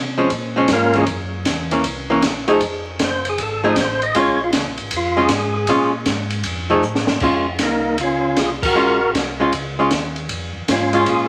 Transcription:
Already playing: C3
0.18 F3 G#3 C#4
0.30 A#2, kick, ride
0.56 F3 G#3 C#4
0.68 G#2, kick, snare, hi-hat pedal, ride
0.73 A#3 C#4 F4 A#4
0.93 E3 A#3 C#4 G#4, ride
0.97 G#3 C#4 F4
1.06 F#2, kick, ride
1.45 E2, kick, snare, hi-hat pedal, ride
1.71 E3 A#3 C#4, ride
1.84 C2, kick, ride
2.10 E3 A#3 C#4
2.22 A#1, kick, snare, hi-hat pedal, ride
2.48 F3 A3 D#4 G#4, ride
2.61 F1, kick, ride
2.99 F#1, kick, snare, hi-hat pedal, ride
3.04 C5
3.25 ride
3.29 G#4
3.38 G#1, kick, ride
3.43 A4
3.64 F3 A3 D#4 G#4
3.76 A1, kick, snare, hi-hat pedal, ride
3.80 C5
4.02 D#5, ride
4.15 A#1 G#3 C#4 F4, kick, ride
4.19 C#5
4.44 F4
4.53 C#2, kick, snare, hi-hat pedal, ride
4.67 A#1
4.78 G#1, ride
4.91 F2, kick, ride
4.97 F4
5.17 G#3 C#4 F4 G#4
5.28 G#2, kick, snare, hi-hat pedal, ride
5.33 G#4
5.56 G#4
5.67 A#2 G#3 C#4 F4, kick, ride
6.06 G#2, kick, snare, hi-hat pedal, ride
6.30 ride
6.44 F2, kick, ride
6.70 F3 A3 D#4 G#4
6.82 A2, hi-hat pedal
6.95 snare
7.07 A2, snare
7.20 F2 G#3 C#4 F4, kick, crash
7.59 C2 D#4, kick, snare, hi-hat pedal, ride
7.63 A#3
7.98 C#2 F4, kick, ride
8.04 C#4
8.37 C2 G#4, kick, snare, hi-hat pedal, ride
8.41 F4
8.62 F#4 A#4, kick, crash
8.75 A#1 G#3 C#4 F4
9.14 C2, kick, snare, hi-hat pedal, ride
9.40 G#3 C#4 F4
9.52 C#2, kick, ride
9.79 G#3 C#4 F4
9.91 D#2, kick, snare, hi-hat pedal, ride
10.16 ride
10.29 F2, kick, ride
10.55 F2
10.68 G#2 C#4 F4, kick, snare, hi-hat pedal, ride
10.93 G#3 C#4 F4, ride
11.06 A#2 F4 G#4, kick, ride

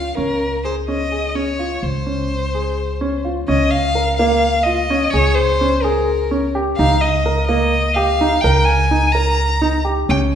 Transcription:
Already playing: C#2 F5
0.17 C#2 C#4 A#4
0.65 G#4 C5
0.88 C#4 D#5
1.12 G#4
1.29 D#5
1.35 C#4 C#5
1.59 F4
1.83 C#2 C5
2.06 C#4
2.55 G#4
3.01 C#4
3.25 F4
3.48 C#2 C#4 D#5
3.71 F5
3.95 A#4
4.17 A#3 F5
4.63 F4 D#5
4.90 C#4
5.11 C#2 G#4 C#5
5.35 C5
5.61 C#4
5.83 G#4 A#4
6.31 C#4
6.55 G4
6.77 C#2 D#4 F5
7.01 D#5
7.26 A#4
7.47 A#3 D#5
7.94 G4 F5
8.21 D#4
8.41 C#2 A#4 G5
8.64 G#5
8.91 D#4
9.12 A#4 A#5
9.62 D#4
9.85 G4
10.09 C#2 C#4 G5

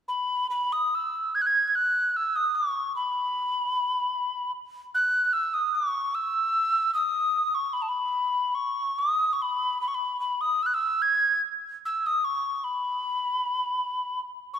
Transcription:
0.08 B5
0.50 B5
0.72 D#6
0.95 E6
1.35 G#6
1.42 F#6
1.46 G#6
1.68 G#6
1.75 F#6
2.17 E6
2.36 D#6
2.55 C#6
2.96 B5
4.95 F#6
5.33 E6
5.54 D#6
5.75 C#6
6.15 E6
6.94 D#6
7.55 C#6
7.73 B5
7.82 A5
7.89 B5
8.55 C#6
8.99 D#6
9.33 C#6
9.42 B5
9.81 B5
9.88 C#6
9.95 B5
10.20 B5
10.41 D#6
10.63 E6 F#6
10.74 E6
11.02 G#6
11.85 E6
12.06 D#6
12.25 C#6
12.64 B5
14.54 C#6

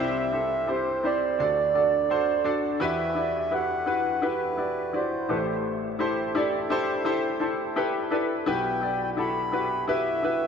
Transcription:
Already playing: C2 C3 C4 E4 G4 C5
0.00 E5
0.32 C4 E4 G4 A4
0.67 C4 E4 G4 C5
0.71 C5
1.03 C4 E4 G4 C5 D5
1.39 D2 D3 D4 F#4 A4 D5
1.74 D4 F#4 A4 D5
2.10 D4 F#4 A4 C5
2.44 D4 F#4 A4 D5
2.80 E2 E3 E4 F#4 G4 B4
2.84 E5
3.15 E4 F#4 G4 D5
3.39 E5
3.51 E4 F#4 G4 B4 F#5
3.86 E4 F#4 G4 B4
4.22 E4 F#4 G4 B4
4.57 E4 F#4 G4 D5
4.93 E4 F#4 G4 C5 D5
5.29 A1 A2 E4 G4 A4 B4
5.36 C5
5.99 E4 G4 A4 C5
6.35 E4 G4 A4 D5
6.70 E4 G4 A4 C5
7.05 E4 G4 A4 C5
7.40 E4 G4 A4 C5 A5
7.76 E4 G4 A4 B4 G5
8.11 E4 G4 A4 B4 D5
8.46 B1 B2 E4 F#4 G4 B4 G5
8.82 E4 F#4 G4 D5
9.04 G5
9.17 E4 F#4 G4 A4 B5
9.52 E4 F#4 G4 B4
9.88 E4 F#4 G4 B4 E5
10.23 E4 F#4 G4 B4

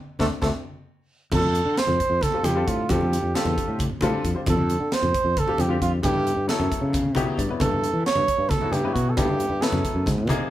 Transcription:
0.19 D2 A3 C4 D4 A4, kick, snare, high conga
0.41 D2 A3 C4 D4 A4, kick, snare, high conga
1.32 F2 A4, kick, crash, muted conga, low conga
1.43 high conga, low conga
1.54 closed hi-hat, low conga
1.65 D3, low conga
1.77 C5, snare, closed hi-hat
1.87 F2, muted conga, low conga
2.00 kick, closed hi-hat
2.10 F2
2.21 A4, kick, snare, closed hi-hat, high conga
2.32 D3 G3 C4 F4 A4, muted fretless electric bass stroke, low conga
2.43 F2 G4, closed hi-hat, muted conga
2.55 D3 G3 C4 F4 A4
2.68 A2 F4, kick, closed hi-hat
2.89 F2 D3 G3 C4 F4 G4 A4, kick, closed hi-hat, muted conga, low conga
3.01 high conga, low conga
3.12 closed hi-hat, low conga
3.23 F2, low conga
3.34 D3 G3 C4 F4 G4 A4, snare, closed hi-hat
3.45 E2, muted conga, low conga
3.58 kick, closed hi-hat
3.68 A2
3.79 kick, closed hi-hat, high conga
3.89 low conga
4.01 A2 D3 G3 C4 F4 A4 D5, kick, closed hi-hat, muted conga
4.24 F2, kick, closed hi-hat
4.34 D3 G3 C4 F4 C5
4.46 F2 A4, kick, closed hi-hat, muted conga, low conga
4.57 high conga, low conga
4.69 closed hi-hat, low conga
4.80 D3, low conga
4.92 C5, snare, closed hi-hat
5.02 F2, muted conga, low conga
5.14 kick, closed hi-hat
5.25 F2
5.37 A4, kick, closed hi-hat, high conga
5.47 D3 G3 C4 F4 G4, muted fretless electric bass stroke, low conga
5.58 F2 G4, closed hi-hat, muted conga
5.69 D3 G3 C4 F4 G4
5.82 F2 F4, kick, closed hi-hat
6.03 G2 C#3 G3 B3 E4 G4 A4, kick, closed hi-hat, muted conga, low conga
6.14 high conga
6.27 closed hi-hat
6.36 G2
6.48 C#3 F#3 B3 E4 A4, snare, closed hi-hat, low conga
6.60 F#2, muted conga, low conga
6.72 kick, closed hi-hat
6.81 C#3, low conga
6.93 kick, closed hi-hat, high conga
7.04 low conga
7.15 B2 C#3 F#3 B3 E4 G4 G5, kick, closed hi-hat, muted conga
7.27 high conga
7.37 G2 D5, kick, closed hi-hat, low conga
7.49 C#3 F#3 B3 E4 B4, low conga
7.60 G2 A4, kick, closed hi-hat, muted conga, low conga
7.71 high conga, low conga
7.82 closed hi-hat, low conga
7.93 E3, low conga
8.06 C#5, snare, closed hi-hat
8.15 G2, muted conga, low conga
8.28 kick, closed hi-hat
8.38 G2
8.49 A4, kick, snare, closed hi-hat, high conga
8.60 C#3 F#3 B3 E4 F#4, muted fretless electric bass stroke, low conga
8.72 G2 G4, closed hi-hat, muted conga
8.83 C#3 F#3 B3 E4 B4
8.94 B2 F#4, kick, closed hi-hat
9.10 A4
9.17 G2 C#3 G3 B3 E4 G4 A4, kick, closed hi-hat, muted conga, low conga
9.28 high conga, low conga
9.39 closed hi-hat, low conga
9.50 G2, low conga
9.61 C#3 F#3 B3 E4 A4 B4, snare, closed hi-hat
9.72 F#2, muted conga, low conga
9.85 kick, closed hi-hat
9.95 F#2
10.06 G#2, kick, snare, closed hi-hat, high conga
10.18 low conga
10.27 C3 F3 A#3 D#4 G#4, kick, closed hi-hat, muted conga

